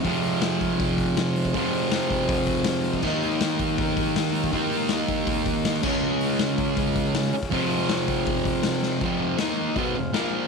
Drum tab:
CC |----------------|----------------|x---------------|--------------x-|
HH |o-o-o-o-o-o-o-o-|o-o-o-o-o-o-o-o-|--o-o-o-o-o-o-o-|o-o-o-o-o-o-o---|
SD |----o-------o---|----o-------o---|----o-------o---|----o-------o---|
BD |o-----o-o-o----o|o-----o-o-o----o|o-----o-o-o----o|o-----o-o-o---o-|

CC |----------------|----------------|----------------|
HH |--o-o-o-o-o-o-o-|o-o-o-o-o-o-o---|o---o---o---o---|
SD |----o-------o---|----o-------o-o-|----o-------o---|
BD |------o-o-o----o|o-----o-o-o-----|o-------o-------|